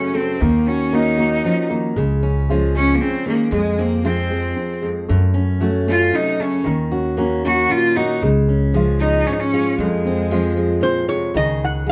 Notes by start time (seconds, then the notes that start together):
Already playing: F#2 C#3 F#3 A3 C#4 F#4
0.14 A3 C4 A4
0.40 D#2 D#3 A#3
0.67 C#4 F#4
0.92 A#3 C#4 D#4 F#4
1.18 A#3 F#4
1.44 F3 C#4
1.70 D#3 A#3
1.96 C#2 C#3 G#3
2.23 C#4
2.49 F3 G#3 C#4 F4
2.75 C#4
2.94 A#3
3.01 C#3 C4 C#4
3.26 D#3 G#3 A#3
3.51 F2 G#3
3.78 A#3 C4
4.04 F3 G#3 C4 F4
4.30 G#3 C4
4.56 C4
4.82 F2 G#3
5.08 F#2 A3
5.34 C#4
5.61 F#3 A3 C#4 F#4
5.87 A3 C#4 F4
6.13 C3 C#4 D#4
6.39 C#3 A3 C#4
6.64 D#2 D#3
6.92 C#4 F#4
7.17 A#3 C#4 F#4
7.44 A#3 C#4 F#4
7.69 A#2 C#4 F4
7.96 A#3 D#4 F#4
8.21 C#2 C#3 G#3
8.48 C#4
8.74 F3 G#3 C#4 F4
9.00 G#3 C#4 D#4
9.27 G#2 C#4
9.33 D#4
9.40 C#4
9.53 G#3 F4
9.78 F2 G#3
10.05 C4
10.31 F3 G#3 C4 F4
10.57 G#3 C4
10.81 A#2 C4 C5
11.08 C3 G#3 C#5
11.34 C#2 C#3 D#3 D#4 G#4 D#5
11.64 F#5
11.86 G#3